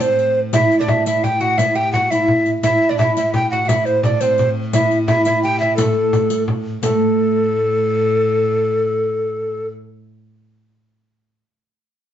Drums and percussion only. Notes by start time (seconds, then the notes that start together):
0.00 riq
0.19 riq
0.53 riq, frame drum
0.72 riq
0.88 riq, frame drum
1.06 riq, frame drum
1.24 riq, frame drum
1.58 riq, frame drum
1.77 frame drum
1.93 frame drum
2.12 riq
2.28 frame drum
2.46 riq, frame drum
2.63 riq, frame drum
2.99 riq, frame drum
3.17 riq
3.34 riq, frame drum
3.69 riq, frame drum
3.86 riq
4.03 riq, frame drum
4.21 riq
4.38 riq, frame drum
4.73 riq, frame drum
4.91 riq
5.08 riq, frame drum
5.25 riq, frame drum
5.43 riq
5.78 riq, frame drum
6.13 riq, frame drum
6.30 riq
6.48 frame drum
6.83 riq, frame drum